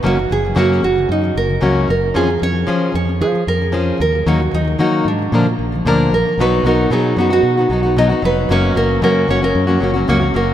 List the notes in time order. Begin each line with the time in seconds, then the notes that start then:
0.03 F#1 F#2 C#3 F#3 A#3 C#4 F#4
0.16 F#2 C#3
0.29 F#1 F#2 C#3 F#3 G#4
0.43 F#2 C#3 F#3
0.55 F#2 C#3 F#3 A#3 C#4 F#4
0.80 F#1 F#2 C#3 F#3 F#4
0.96 F#2 C#3 F#3
1.09 F#2 D#4
1.22 F#2 C#3 F#3
1.36 F#1 A#4
1.48 F#2 C#3 F#3
1.61 C#2 F#2 C#3 F#3 A#3 C#4 F#4
1.88 F#1 F#2 C#3 F#3 A#4
2.14 F2 F3 C#4 F4 G#4
2.27 F3 C#4
2.40 F2 F3 C#4 C#5
2.53 F3 C#4
2.67 F3 C#4 F4 G#4
2.92 F2 F3 C#4 C#5
3.05 F3 C#4
3.21 F3 G#4
3.32 F3 C#4
3.47 F2 A#4
3.59 F3 C#4
3.72 F3 C#4 F4 G#4
3.98 D#2 D#3 F#3 A#4
4.13 D#3 F#3
4.26 D#2 D#3 F#3 A#3 D#4 F#4
4.39 D#3 F#3
4.52 D#2 D#3 F#3 D#4
4.65 D#3 F#3
4.78 D#3 F#3 A#3 D#4 F#4
5.04 G#2 D#3 F#3 D4
5.19 D#3 F#3
5.32 A#2 D3 F3 A#3 D4 A#4
5.46 A#2
5.59 A#1
5.72 A#2 D3 F3
5.85 D2 A#2 D3 F3 A#3 D4 A#4 D5
6.11 A#1 A#2 D3 A#4
6.16 F3
6.25 A#2 D3 F3
6.38 B1 B2 F#3 B3 D#4 F#4 B4
6.63 B1 F#3 B3 D#4 A#4
6.68 F#4
6.90 B2 F#3 B3 D#4 F#4 G#4
7.16 F#2 F#3 B3 D#4 F#4
7.21 F#4
7.30 B3 D#4 F#4
7.43 B2
7.57 B3 D#4 F#4
7.70 B1 F#3 B3 D#4 F#4
7.83 B3 D#4 F#4
7.97 B2 F#3 B3 D#4 F#4 D#5
8.09 B3 D#4 F#4
8.22 F1 F#3 B3 D#4 F#4 B4
8.49 F#1 F#2 C#3 F#3 A#3 C#4 F#4 C#5
8.75 F#1 F#3 A#3 C#4 F#4 A#4
9.02 F#2 C#3 F#3 A#3 C#4 F#4 A#4
9.28 F#1 F#3 A#3 C#4 F#4 C#5
9.42 F#3 A#3 C#4 F#4 A#4
9.55 F#2
9.67 F#3 A#3 C#4 F#4
9.80 F#1 F#3 A#3 C#4 F#4
9.94 F#3 A#3 C#4 F#4
10.08 C#2 F#2 C#3 F#3 A#3 C#4 F#4 C#5
10.20 F#3 A#3 C#4 F#4
10.34 F#1 F#3 A#3 C#4 F#4 A#4